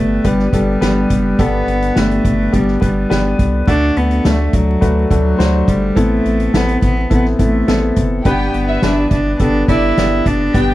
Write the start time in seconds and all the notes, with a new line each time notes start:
Already playing: G1 G2 A3 B3 D4 G4 B4
0.24 G1 G3 B3 D4 G4 B4, kick, closed hi-hat
0.39 snare
0.53 G1 G3 B3 D4 G4 A4, kick, closed hi-hat
0.81 G1 B3 D4 G4 B4, snare, closed hi-hat
1.10 F#1, kick, closed hi-hat
1.39 G1 G2 B3 D4 G4 A4, kick, closed hi-hat
1.67 G1, closed hi-hat
1.82 closed hi-hat
1.95 G1 A3 B3 D4 G4 B4, snare, closed hi-hat
2.11 closed hi-hat
2.25 G1, kick, closed hi-hat
2.52 G1 G3 B3 D4 G4 D5, kick, closed hi-hat
2.68 snare
2.81 G1 G3 B3 D4 G4 B4, kick, closed hi-hat
3.09 G1 B3 D4 G4 B4, snare, closed hi-hat
3.39 C2, kick, closed hi-hat
3.67 D2 D3 A3 D4 F#4 A4, kick, closed hi-hat
3.97 D2 B3, closed hi-hat
4.11 closed hi-hat
4.24 D2 A3 D4 F#4 A4, snare, closed hi-hat
4.53 D2 F#3, kick, closed hi-hat
4.81 D2 A3 D4 F#4 B4, kick, closed hi-hat
5.10 D2 F#3 A3 D4 F#4 A4, kick, closed hi-hat
5.38 D2 A3 D4 F#4 C5, snare, closed hi-hat
5.68 G1 G3, kick, closed hi-hat
5.96 A1 A2 A3 B3 C4 E4 A4, kick, closed hi-hat
6.25 A1, closed hi-hat
6.40 closed hi-hat
6.53 A1 B3 C4 E4 A4, snare, closed hi-hat
6.68 closed hi-hat
6.82 A1 B3, kick, closed hi-hat
7.10 A1 B3 C4 E4 A4, kick, closed hi-hat
7.25 snare
7.38 A1 A3 B3 C4 E4 A4, kick, closed hi-hat
7.67 A1 B3 C4 E4 A4, snare, closed hi-hat
7.96 F#1, kick, closed hi-hat
8.25 G1 G2 B3 D4 G4 B4 G5, kick, closed hi-hat
8.54 G1 B3, closed hi-hat
8.68 E4 E5
8.82 G1 B3 D4 G4 B4, snare, closed hi-hat
9.11 G1 D4, kick, closed hi-hat
9.39 G1 B3 D4 G4 A4, kick, closed hi-hat
9.68 G1 B3 D4 E4 G4 A4 D5, kick, closed hi-hat
9.97 G1 B3 D4 G4 D5, snare, closed hi-hat
10.26 F#1 D4, kick, closed hi-hat
10.54 G1 G2 B3 D4 G4 D5 G5, kick, closed hi-hat